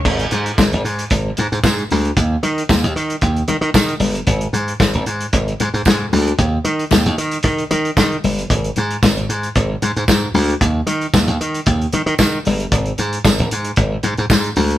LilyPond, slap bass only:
\new Staff \with { instrumentName = "Slap bass" } { \clef bass \time 4/4 \key dis \minor \tempo 4 = 114 gis,,8 gis,8 gis,,16 gis,,16 gis,8 gis,,8 gis,16 gis,16 gis,8 d,8 | dis,8 dis8 dis,16 dis,16 dis8 dis,8 dis16 dis16 dis8 g,,8 | gis,,8 gis,8 gis,,16 gis,,16 gis,8 gis,,8 gis,16 gis,16 gis,8 d,8 | dis,8 dis8 dis,16 dis,16 dis8 dis8 dis8 dis8 g,,8 |
gis,,8 gis,8 gis,,16 gis,,16 gis,8 gis,,8 gis,16 gis,16 gis,8 d,8 | dis,8 dis8 dis,16 dis,16 dis8 dis,8 dis16 dis16 dis8 g,,8 | gis,,8 gis,8 gis,,16 gis,,16 gis,8 gis,,8 gis,16 gis,16 gis,8 d,8 | }